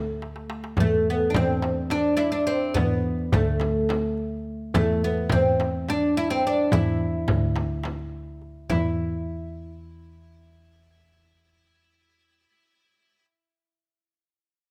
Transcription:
Already playing: double bass D2, oud A3
0.07 darbuka ka
0.22 darbuka tek
0.36 darbuka ka
0.50 darbuka tek
0.64 darbuka ka
0.77 double bass E2, oud A3, frame drum, darbuka dum
1.10 oud B3
1.21 darbuka ka
1.30 oud D4
1.34 double bass E2, oud C4, frame drum, darbuka dum
1.62 darbuka tek, frame drum
1.90 oud D4, darbuka tek, frame drum
2.17 oud D4 E4, darbuka ka
2.32 oud D4
2.47 oud C4
2.74 double bass E2, oud B3, darbuka dum, frame drum
3.19 darbuka ka
3.33 double bass D2, oud A3, darbuka dum, frame drum
3.60 darbuka tek, frame drum
3.89 darbuka tek, frame drum
4.17 darbuka ka
4.74 double bass E2, oud A3, frame drum, darbuka dum
5.04 oud B3
5.17 darbuka ka
5.30 double bass E2, oud C4, frame drum, darbuka dum
5.60 darbuka tek, frame drum
5.89 oud D4, darbuka tek, frame drum
6.17 oud E4
6.30 oud C4
6.47 oud D4
6.72 double bass E2, oud E4, frame drum, darbuka dum
7.01 darbuka ka
7.28 double bass D2, frame drum, darbuka dum
7.56 darbuka tek, frame drum
7.84 darbuka tek, frame drum
7.99 darbuka ka
8.41 darbuka ka
8.70 double bass E2, oud E4, darbuka dum, frame drum

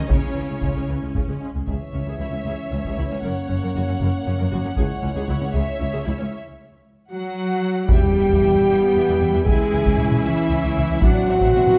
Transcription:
Already playing: viola section C#4
0.09 double bass section C#2, viola section C#3, cello section C#3, violin section C#4 C#5, french horn section E4, taiko
0.22 double bass section C#2, viola section G#3
0.35 double bass section C#2, viola section E3
0.49 double bass section C#2, viola section G#3
0.62 double bass section C#2, trombone section C#3 G#3, viola section C#3, taiko
0.76 double bass section C#2, viola section G#3
0.88 double bass section C#2, viola section E3
1.02 double bass section C#2, viola section G#3
1.14 double bass section C#2, viola section C#3, taiko
1.28 double bass section C#2, viola section G#3
1.39 trombone section C#3 G#3
1.54 double bass section C#2, viola section G#3
1.66 cello section C#2, double bass section C#2, french horn section E3 C#4, viola section G#4, violin section C#5 E5, taiko
1.94 cello section C#2, double bass section C#2, viola section C#4
2.06 cello section C#2, viola section G#4
2.19 cello section C#2, double bass section C#2, viola section E4
2.32 cello section C#2, viola section C#4
2.45 double bass section C#2, cello section C#2, viola section G#4
2.71 double bass section C#2, cello section C#2, viola section C#4
2.84 cello section C#2, viola section G#4, taiko
2.98 cello section C#2, double bass section C#2, viola section E4
3.11 cello section C#2, viola section C#4
3.23 double bass section F#1, cello section F#2, french horn section A#3, viola section A#4, violin section F#5
3.48 double bass section F#1, cello section F#2, viola section C#4
3.62 cello section F#2, viola section A#4
3.75 double bass section F#1, cello section F#2, viola section F#4
3.89 cello section F#2, viola section C#4
4.00 double bass section F#1, cello section F#2, viola section A#4
4.27 double bass section F#1, cello section F#2, viola section C#4
4.38 cello section F#2, viola section A#4
4.52 double bass section F#1, cello section F#2, viola section F#4
4.64 cello section F#2, viola section C#4
4.76 double bass section C#2, cello section C#2, french horn section G#3 E4, viola section G#4, violin section C#5, taiko
5.02 double bass section C#2, cello section C#2, viola section C#4
5.16 cello section C#2, viola section G#4
5.29 double bass section C#2, cello section C#2, viola section E4
5.41 cello section C#2, viola section C#4
5.54 double bass section C#2, cello section C#2, viola section G#4, violin section E5
5.79 double bass section C#2, cello section C#2, viola section C#4
5.92 cello section C#2, viola section G#4
6.05 double bass section C#2, cello section C#2, viola section E4
6.19 cello section C#2, viola section C#4
7.11 cello section F#3, french horn section F#4, violin section F#5
7.89 double bass section E2, timpani E2, trombone section E3 B3, cello section G3, french horn section G4, violin section E5 G5, taiko, impact
8.18 double bass section E2, violin section E5
8.29 double bass section E2, violin section E5, taiko
8.42 double bass section E2, violin section E5, taiko mid
8.55 double bass section E2, violin section E5, taiko mid
8.69 double bass section E2, viola section B3, violin section E5
8.95 double bass section E2, violin section E5
9.07 double bass section E2, violin section E5
9.19 double bass section E2, violin section E5
9.33 double bass section E2, violin section E5
9.45 double bass section C#2, cello section G#3, trombone section C#4, viola section E4, french horn section G#4, violin section E5 G#5, taiko
9.73 double bass section C#2, violin section E5
9.84 double bass section C#2, violin section E5, taiko
9.98 double bass section C#2, violin section E5, taiko mid
10.11 double bass section C#2, violin section E5, taiko mid
10.24 double bass section C#2, cello section E3, french horn section E4, violin section E5
10.50 double bass section C#2, violin section E5
10.63 double bass section C#2, violin section E5
10.76 double bass section C#2, violin section E5
10.89 double bass section C#2, violin section E5
11.01 double bass section A1, trombone section E3 C4, cello section F#3, viola section D4, french horn section F#4, violin section E5 F#5, taiko
11.28 double bass section A1, viola section C4, violin section E5
11.41 double bass section A1, violin section E5, taiko
11.54 double bass section A1, viola section B3, violin section E5, taiko mid
11.67 double bass section A1, violin section E5, taiko mid

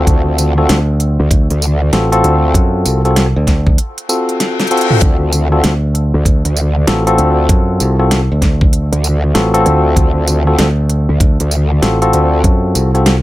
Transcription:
Already playing: tine electric piano C4 F4 F#4 A4
0.07 wobble bass D2, kick, closed hi-hat
0.38 closed hi-hat, tambourine
0.58 tine electric piano C4 F4 F#4 A4, cross-stick
0.69 fingered electric bass D2, snare, closed hi-hat
1.00 closed hi-hat
1.19 wobble bass D2
1.31 fingered electric bass D2, kick, closed hi-hat
1.50 wobble bass D2, closed hi-hat
1.62 tambourine
1.93 fingered electric bass A1, tine electric piano C4 F4 F#4 A4, snare, closed hi-hat
2.12 tine electric piano C4 F4 F#4 A4, closed hi-hat
2.24 wobble bass D2, closed hi-hat
2.54 fingered electric bass F#2, kick, closed hi-hat
2.86 fingered electric bass C2, closed hi-hat, tambourine
3.05 tine electric piano C4 F4 F#4 A4, cross-stick, closed hi-hat
3.11 cross-stick
3.16 cross-stick, snare, closed hi-hat
3.26 cross-stick
3.36 fingered electric bass D2
3.47 kick, snare, closed hi-hat
3.67 kick
3.78 closed hi-hat, reverse cymbal
3.98 closed hi-hat
4.09 tine electric piano C4 F4 F#4 A4, tambourine
4.29 closed hi-hat
4.40 snare, closed hi-hat
4.60 snare, closed hi-hat
4.67 tine electric piano F#4 A4, closed hi-hat
4.71 tine electric piano C4 F4, closed hi-hat
4.77 closed hi-hat
4.81 closed hi-hat
4.90 mid tom
5.02 wobble bass D2, kick, closed hi-hat
5.33 closed hi-hat, tambourine
5.52 tine electric piano C4 F4 F#4 A4, cross-stick
5.64 fingered electric bass D2, snare, closed hi-hat
5.95 closed hi-hat
6.14 wobble bass D2
6.25 fingered electric bass D2, kick, closed hi-hat
6.45 wobble bass D2, closed hi-hat
6.57 tambourine
6.87 fingered electric bass A1, tine electric piano C4 F4 F#4 A4, snare, closed hi-hat
7.07 tine electric piano C4 F4 F#4 A4, closed hi-hat
7.18 wobble bass D2, closed hi-hat
7.49 fingered electric bass F#2, kick, closed hi-hat
7.80 fingered electric bass C2, closed hi-hat, tambourine
7.99 tine electric piano C4 F4 F#4 A4, cross-stick
8.11 snare, closed hi-hat
8.32 fingered electric bass D2
8.42 kick, snare, closed hi-hat
8.61 kick
8.73 closed hi-hat
8.92 wobble bass D2, closed hi-hat
9.04 tambourine
9.34 fingered electric bass A1, tine electric piano C4 F4 F#4 A4, snare, closed hi-hat
9.54 tine electric piano C4 F4 F#4 A4, closed hi-hat
9.66 wobble bass D2, cross-stick, closed hi-hat
9.96 wobble bass D2, kick, closed hi-hat
10.27 closed hi-hat, tambourine
10.47 tine electric piano C4 F4 F#4 A4, cross-stick
10.59 fingered electric bass D2, snare, closed hi-hat
10.89 closed hi-hat
11.09 wobble bass D2
11.20 fingered electric bass D2, kick, closed hi-hat
11.40 wobble bass D2, closed hi-hat
11.51 tambourine
11.82 fingered electric bass A1, tine electric piano C4 F4 F#4 A4, snare, closed hi-hat
12.02 tine electric piano C4 F4 F#4 A4, closed hi-hat
12.13 wobble bass D2, closed hi-hat
12.44 fingered electric bass F#2, kick, closed hi-hat
12.75 fingered electric bass C2, closed hi-hat, tambourine
12.94 tine electric piano C4 F4 F#4 A4, cross-stick, closed hi-hat
13.06 snare, closed hi-hat

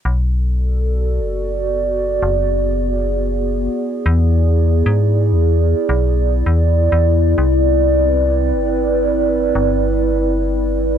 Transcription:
0.05 fm bass B1, ambient pad B3 F#4 A4 D5
1.20 fm bass F#1
1.89 ambient pad G#4
2.23 fm bass F#1
3.71 ambient pad E4 D5
4.06 fm bass E2
4.86 fm bass G#2
5.32 fm bass E2
5.89 fm bass B1
6.46 fm bass E2
6.92 fm bass E2
7.38 fm bass C2, ambient pad C4 B4
8.52 fm bass G1
9.55 fm bass G1

